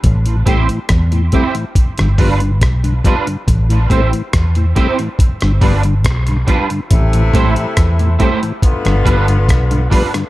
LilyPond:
<<
  \new Staff \with { instrumentName = "Clean electric guitar" } { \time 4/4 \key a \minor \tempo 4 = 70 r8 <c' e' g' c''>8 r8 <c' e' g' c''>8 r8 <g d' f' b'>8 r8 <g d' f' b'>8 | r8 <c' e' g' c''>8 r8 <c' e' g' c''>8 r8 <g d' f' b'>8 r8 <g d' f' b'>8 | r8 <a e' g' c''>8 r8 <a e' g' c''>8 r8 <g d' f' b'>8 r8 <g d' f' b'>8 | }
  \new Staff \with { instrumentName = "Horn section" } { \time 4/4 \key a \minor r1 | r1 | <c a e'>4. r8 <d b f'>4. r8 | }
  \new Staff \with { instrumentName = "Tonewheel organ" } { \clef bass \time 4/4 \key a \minor << { r8 <g a c'>8 r8 <g a c'>8 r8 <f g b>8 r8 <f g b>8 | r8 <g a c'>8 r8 <g a c'>8 r8 <f g b>8 r8 <f g b>8 | r8 <g a c'>8 r8 <g a c'>8 r8 <f g b>8 r8 <f g b>8 | } \\ { r16 <a, e>16 r16 <a, e>16 r16 <a, e>16 r16 <a, e>16 r16 <g, d>16 r16 <g, d>16 r16 <g, d>16 r16 <g, d>16 | r16 <a, e>16 r16 <a, e>16 r16 <a, e>16 r16 <a, e>16 r16 <g, d>16 r16 <g, d>16 r16 <g, d>16 r16 <g, d>16 | r16 <a, e>16 r16 <a, e>16 r16 <a, e>16 r16 <a, e>16 r16 <g, d>16 r16 <g, d>16 r16 <g, d>16 r16 <g, d>16 | } >> }
  \new Staff \with { instrumentName = "Fingered electric bass" } { \clef bass \time 4/4 \key a \minor a,,8 a,,16 r16 e,8 r8. g,,16 g,,8 b,,8 r8 | a,,8 a,,16 r16 e,8 r8. g,,16 g,,8 b,,8 r8 | a,,8 a,,16 r16 e,8 r8. g,,16 g,,8 b,,8 r8 | }
  \new DrumStaff \with { instrumentName = "Drums" } \drummode { \time 4/4 <hh bd>16 hh16 <hh bd>16 hh16 <hh bd ss>16 hh16 <hh bd>16 hh16 <hh bd>16 <hh ss>16 <hho bd>16 hh16 <hh bd ss>16 hh16 <hh bd>16 hh16 | <hh bd>16 hh16 <hh bd>16 hh16 <hh bd ss>16 hh16 <hh bd>16 hh16 <hh bd>16 <hh ss>16 <hho bd>16 hh16 <hh bd ss>16 hh16 <hh bd>16 hh16 | <hh bd>16 hh16 <hh bd>16 hh16 <hh bd ss>16 hh16 <hh bd>16 hh16 <hh bd>16 <hh ss>16 <hh bd>16 hh16 <hh bd ss>16 hh16 <hho bd>16 <hh ss>16 | }
>>